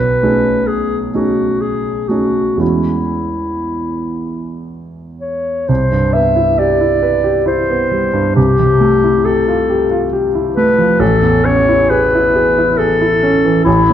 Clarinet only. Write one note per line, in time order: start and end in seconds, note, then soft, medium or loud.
0.00 0.69 B4 medium
0.67 1.00 G#4 soft
1.14 1.63 F#4 soft
1.61 2.10 G#4 soft
2.09 2.61 F#4 soft
2.60 4.70 E4 soft
5.21 5.70 C#5 soft
5.69 6.15 C5 medium
6.13 6.60 E5 medium
6.58 7.47 D5 medium
7.47 8.35 C5 medium
8.36 9.26 G4 medium
9.25 10.14 A4 medium
10.57 11.01 B4 medium
11.00 11.47 A4 medium
11.45 11.92 C#5 medium
11.90 12.79 B4 medium
12.78 13.64 A4 medium
13.64 13.93 E4 medium